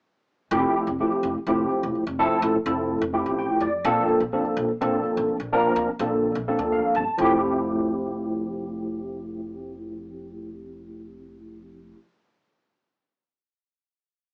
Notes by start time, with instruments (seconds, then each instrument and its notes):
0.51 upright bass F1, tine electric piano F3 A3 C4 E4 G4
0.75 muted upright bass stroke
0.87 upright bass F1
1.00 tine electric piano F3 A3 C4 E4 G4
1.12 muted upright bass stroke
1.23 upright bass F1
1.47 upright bass F1, tine electric piano F3 A3 C4 E4 G4
1.71 muted upright bass stroke
1.83 upright bass E1
1.95 muted upright bass stroke
2.07 upright bass F1
2.19 tine electric piano F3 A3 C4 E4 A4
2.42 upright bass A1
2.66 upright bass F1, tine electric piano F3 A3 C4 E4 A4
3.01 upright bass F1
3.13 tine electric piano F3 A3 C4 E4 G4
3.26 upright bass A1
3.38 tine electric piano G5
3.60 upright bass F2, tine electric piano D5
3.84 upright bass A#1, tine electric piano F3 A#3 C4 D4 A4
4.08 muted upright bass stroke
4.20 upright bass A#1
4.33 tine electric piano F3 A#3 C4 D4 A4
4.45 muted upright bass stroke
4.57 upright bass A#1
4.81 upright bass A#1, tine electric piano F3 A#3 C4 D4 A4
5.05 muted upright bass stroke
5.17 upright bass A1
5.29 muted upright bass stroke
5.40 upright bass A#1
5.52 tine electric piano F3 A#3 C4 D4 A#4
5.76 upright bass D2
5.99 upright bass A#1, tine electric piano F3 A#3 C4 D4 A4
6.35 upright bass A#1
6.48 tine electric piano F3 A#3 C4 D4 A4
6.59 upright bass D2
6.72 tine electric piano F5
6.95 upright bass G1, tine electric piano A5
7.17 upright bass F1, tine electric piano F3 A3 C4 E4
7.22 tine electric piano G4